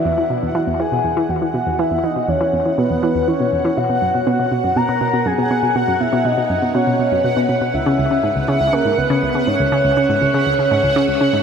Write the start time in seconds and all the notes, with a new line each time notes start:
Already playing: E3 E5 F#5
0.01 E2 B3
0.18 E3
0.30 B2
0.39 E2 F#4
0.55 E3 F#5
0.67 E2
0.80 E3 G#5
0.92 B2
1.04 E2 F#5
1.17 E3
1.29 E2 F#5
1.42 E3
1.54 B2 F#5
1.67 E2
1.79 E3 E5
1.91 E2
2.04 E3 D#5
2.16 B2
2.28 E2 C#5
2.41 E3
2.53 E2
2.66 E3
2.78 B2 B4
2.90 E2
3.03 E3
3.15 E2
3.28 E3 C#5
3.40 B2
3.52 E2
3.65 E3
3.77 B2 F#5
3.90 B2
4.02 F#2
4.14 B2
4.27 B2
4.39 B2
4.52 B2 B4
4.56 C#5
4.64 F#2
4.76 B2 A#5
4.89 B2
5.01 B2 A#5
5.13 B2
5.26 F#2 G#5
5.38 B2
5.51 B2
5.63 B2
5.75 B2 F#5
5.88 F#2
6.00 B2 E5
6.13 B2
6.25 B2 D#5
6.37 B2
6.50 F#2
6.62 B2
6.75 B2 C#5
6.87 B2
6.99 B2
7.12 F#2
7.24 B2
7.37 B2
7.49 B2
7.61 B2
7.74 C#2 C#4 E5
7.86 C#3
7.96 C#2 G#4
8.11 C#3
8.23 G#2
8.36 C#2
8.48 C#3
8.55 E5
8.61 C#2
8.73 C#3 A#4
8.85 G#2
8.98 C#2 B4
9.10 C#3
9.23 C#2
9.35 C#3
9.47 G#2 C#5
9.60 C#2
9.72 C#3
9.85 C#2
9.97 C#3
10.09 G#2
10.22 C#2
10.34 C#3
10.47 C#2
10.59 C#3
10.71 G#2
10.84 C#2
10.96 C#3
11.08 C#2
11.21 C#3 C#5
11.33 G#2